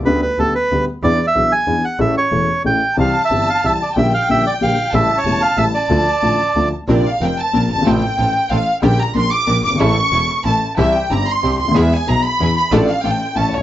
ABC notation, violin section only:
X:1
M:3/4
L:1/16
Q:1/4=185
K:Dm
V:1 name="Violin section"
z12 | z12 | z12 | a12 |
g12 | a12 | a8- a2 z2 | d2 f2 g2 a4 a2 |
g8 f3 z | g2 b2 c'2 d'4 d'2 | ^c'8 a3 z | e2 g2 b2 c'4 c'2 |
e2 ^g2 b2 =b4 b2 | d2 f2 g4 a2 ^c2 |]